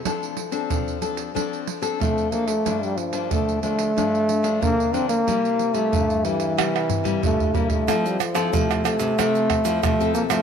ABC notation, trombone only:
X:1
M:4/4
L:1/16
Q:1/4=92
K:F
V:1 name="Trombone"
z12 A,2 B, A,- | A, G, F,2 A,2 A,6 B,2 C B,- | B,3 A,3 E,6 A,2 B, A,- | A, G, F,2 A,2 A,6 A,2 B, A, |]